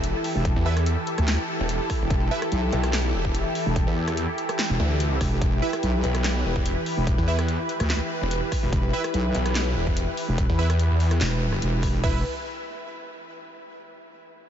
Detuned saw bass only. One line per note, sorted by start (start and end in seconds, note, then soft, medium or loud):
0.00 0.13 E1 loud
0.56 0.96 E2 loud
1.59 1.78 E1 loud
2.01 2.09 E1 medium
2.73 3.12 B1 loud
3.14 3.23 E1 medium
3.25 3.44 E1 loud
3.87 4.27 E2 loud
4.79 5.19 D2 loud
6.04 6.43 B1 loud
6.45 6.54 E1 loud
6.56 6.75 E1 loud
7.18 7.58 E2 loud
8.21 8.40 E1 loud
8.63 8.71 E1 medium
9.35 9.74 B1 loud
9.76 9.85 E1 loud
9.87 10.06 E1 loud
10.49 10.89 E2 loud
10.91 11.19 E2 loud